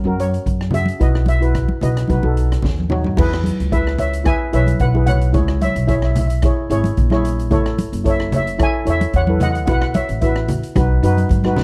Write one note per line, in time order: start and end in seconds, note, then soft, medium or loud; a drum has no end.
0.00 0.19 C#5 medium
0.00 high conga medium
0.05 0.35 F#2 medium
0.05 0.45 C#4 medium
0.05 0.45 F#4 medium
0.05 0.46 A#4 medium
0.20 0.75 C#5 medium
0.20 closed hi-hat medium
0.34 closed hi-hat medium
0.46 0.88 F#2 medium
0.46 kick medium
0.46 closed hi-hat medium
0.61 cross-stick medium
0.71 0.90 C#4 medium
0.71 0.90 F#4 medium
0.71 0.90 G#4 medium
0.71 1.01 E5 medium
0.71 closed hi-hat medium
0.71 low conga medium
0.86 closed hi-hat medium
0.86 high conga medium
1.00 1.63 B1 loud
1.00 1.24 E4 medium
1.00 1.25 F#4 medium
1.00 1.25 B4 medium
1.00 1.14 D#5 medium
1.00 kick loud
1.00 closed hi-hat medium
1.15 cross-stick medium
1.26 1.84 E5 medium
1.26 closed hi-hat medium
1.26 high conga medium
1.41 1.65 E4 medium
1.41 1.66 F#4 medium
1.41 1.66 B4 medium
1.41 closed hi-hat medium
1.55 kick medium
1.55 cross-stick medium
1.55 closed hi-hat medium
1.68 high conga medium
1.81 2.02 B1 medium
1.81 2.06 E4 medium
1.81 2.07 F#4 medium
1.81 2.07 B4 medium
1.81 2.87 D#5 medium
1.81 closed hi-hat medium
1.81 low conga medium
1.97 cross-stick medium
1.97 closed hi-hat medium
2.08 2.21 B1 medium
2.08 2.20 D#4 medium
2.08 2.21 F#4 medium
2.08 2.21 B4 medium
2.08 kick loud
2.08 closed hi-hat medium
2.08 high conga medium
2.23 2.54 B1 medium
2.23 2.63 D#4 medium
2.23 2.63 F#4 medium
2.23 2.63 A4 medium
2.23 high conga medium
2.37 closed hi-hat medium
2.52 cross-stick medium
2.52 closed hi-hat medium
2.62 3.05 D#2 medium
2.62 kick medium
2.62 snare medium
2.62 low conga medium
2.80 high tom medium
2.90 3.07 D#4 medium
2.90 3.07 F#4 medium
2.90 3.07 C#5 medium
2.90 mid tom medium
2.90 low conga medium
3.04 floor tom medium
3.04 high conga medium
3.17 3.50 E2 loud
3.17 3.50 E4 medium
3.17 3.51 G#4 medium
3.17 3.51 B4 loud
3.17 kick loud
3.17 crash loud
3.17 low conga medium
3.33 cross-stick medium
3.44 closed hi-hat medium
3.44 high conga medium
3.60 4.31 C#2 medium
3.60 closed hi-hat medium
3.72 4.05 E4 medium
3.72 4.05 G#4 medium
3.72 3.97 B4 medium
3.72 4.05 B4 medium
3.72 3.98 E5 medium
3.72 kick medium
3.72 closed hi-hat medium
3.87 cross-stick medium
3.98 4.24 C#5 medium
3.98 4.27 E5 medium
3.98 closed hi-hat medium
3.98 low conga medium
4.13 closed hi-hat medium
4.24 4.42 E4 medium
4.24 4.42 G#4 medium
4.24 4.43 B4 medium
4.24 4.52 E5 medium
4.24 4.51 G#5 loud
4.24 kick loud
4.24 cross-stick medium
4.24 closed hi-hat medium
4.53 4.74 B1 medium
4.53 4.77 E4 medium
4.53 4.78 G#4 medium
4.53 4.78 B4 medium
4.53 4.80 C#5 medium
4.53 4.81 E5 medium
4.53 closed hi-hat medium
4.67 closed hi-hat medium
4.67 high conga medium
4.79 5.34 B1 medium
4.79 5.06 B4 medium
4.79 5.05 F#5 medium
4.79 kick medium
4.79 closed hi-hat medium
4.94 5.18 E4 medium
4.94 5.19 G#4 medium
4.94 5.20 B4 medium
4.94 high conga medium
5.06 5.58 C#5 medium
5.06 5.63 F#5 loud
5.06 closed hi-hat medium
5.06 low conga medium
5.21 closed hi-hat medium
5.33 5.66 C#2 loud
5.33 5.66 E4 medium
5.33 5.67 G#4 medium
5.33 5.67 C#5 medium
5.33 kick loud
5.33 closed hi-hat medium
5.33 low conga medium
5.48 cross-stick medium
5.61 5.88 C#5 medium
5.61 5.86 E5 medium
5.61 closed hi-hat medium
5.61 high conga medium
5.75 6.47 B1 medium
5.75 closed hi-hat medium
5.87 6.21 E4 medium
5.87 6.21 G#4 medium
5.87 6.22 C#5 medium
5.87 5.97 C#5 soft
5.87 5.94 E5 medium
5.87 kick loud
5.87 closed hi-hat medium
5.95 6.03 E5 soft
6.02 6.10 E5 medium
6.02 cross-stick medium
6.11 6.18 E5 medium
6.11 closed hi-hat medium
6.16 6.26 E5 medium
6.16 low conga medium
6.27 6.34 E5 soft
6.27 closed hi-hat medium
6.42 6.60 E4 medium
6.42 6.61 G#4 medium
6.42 6.61 C#5 medium
6.42 kick loud
6.42 cross-stick medium
6.42 closed hi-hat medium
6.70 6.90 G#1 medium
6.70 6.95 E4 medium
6.70 6.95 G#4 medium
6.70 6.95 C#5 loud
6.70 closed hi-hat medium
6.84 closed hi-hat medium
6.84 high conga medium
6.97 7.52 A#1 medium
6.97 kick medium
6.97 closed hi-hat medium
7.10 7.35 E4 medium
7.10 7.36 G#4 medium
7.10 7.36 C#5 loud
7.10 cross-stick medium
7.10 high conga medium
7.25 closed hi-hat medium
7.39 closed hi-hat medium
7.51 7.83 A1 loud
7.51 7.84 E4 medium
7.51 7.84 A4 medium
7.51 7.84 C#5 loud
7.51 kick loud
7.51 closed hi-hat medium
7.51 low conga medium
7.66 cross-stick medium
7.78 closed hi-hat medium
7.78 high conga medium
7.93 8.64 F#1 medium
7.93 closed hi-hat medium
8.04 8.38 E4 medium
8.04 8.38 A4 medium
8.04 8.38 C#5 medium
8.04 8.31 C#5 medium
8.04 kick medium
8.04 closed hi-hat medium
8.10 8.33 E5 medium
8.20 cross-stick medium
8.32 8.59 C#5 medium
8.32 closed hi-hat medium
8.32 low conga medium
8.36 8.61 E5 medium
8.47 closed hi-hat medium
8.59 8.76 E4 medium
8.59 8.76 A4 medium
8.59 8.77 C#5 medium
8.59 8.86 E5 medium
8.59 kick loud
8.59 cross-stick medium
8.59 closed hi-hat medium
8.63 8.89 G#5 loud
8.85 9.07 E2 medium
8.85 9.10 E4 medium
8.85 9.11 A4 medium
8.85 9.11 C#5 medium
8.85 closed hi-hat medium
8.90 9.01 C#5 medium
8.90 9.01 E5 loud
9.01 closed hi-hat medium
9.01 high conga medium
9.13 9.67 E2 medium
9.13 9.28 C#5 medium
9.13 9.28 F#5 loud
9.13 kick medium
9.13 closed hi-hat medium
9.27 9.52 E4 medium
9.27 9.53 A4 medium
9.27 9.53 B4 medium
9.27 high conga medium
9.40 9.49 D#5 medium
9.40 9.49 F#5 loud
9.40 closed hi-hat medium
9.40 low conga medium
9.51 9.54 F#5 medium
9.55 9.62 F#5 medium
9.55 closed hi-hat medium
9.66 9.99 B1 loud
9.66 10.00 E4 medium
9.66 10.01 F#4 medium
9.66 10.01 B4 medium
9.66 9.71 F#5 medium
9.66 kick loud
9.66 closed hi-hat medium
9.66 low conga medium
9.72 9.79 F#5 medium
9.81 9.87 F#5 medium
9.81 cross-stick medium
9.94 10.20 C#5 medium
9.94 10.20 E5 medium
9.94 closed hi-hat medium
9.94 high conga medium
10.09 10.60 A1 medium
10.09 closed hi-hat medium
10.22 10.55 E4 medium
10.22 10.56 F#4 medium
10.22 10.73 B4 soft
10.22 10.56 B4 medium
10.22 10.72 E5 medium
10.22 kick medium
10.22 closed hi-hat medium
10.36 cross-stick medium
10.48 closed hi-hat medium
10.48 low conga medium
10.63 closed hi-hat medium
10.75 10.97 B1 loud
10.75 10.93 D#4 medium
10.75 10.93 F#4 medium
10.75 10.94 B4 medium
10.75 kick loud
10.75 cross-stick medium
10.75 closed hi-hat medium
10.75 high conga medium
10.75 low conga medium
11.03 11.23 F#2 medium
11.03 11.27 D#4 medium
11.03 11.28 F#4 medium
11.03 11.28 B4 medium
11.03 closed hi-hat medium
11.17 closed hi-hat medium
11.17 high conga medium
11.29 11.55 G#2 medium
11.29 kick medium
11.29 closed hi-hat medium
11.29 high conga medium
11.44 11.64 D#4 medium
11.44 11.64 F#4 medium
11.44 11.64 B4 medium
11.44 cross-stick medium
11.44 high conga medium
11.56 11.64 F#2 medium
11.56 snare medium
11.56 low conga medium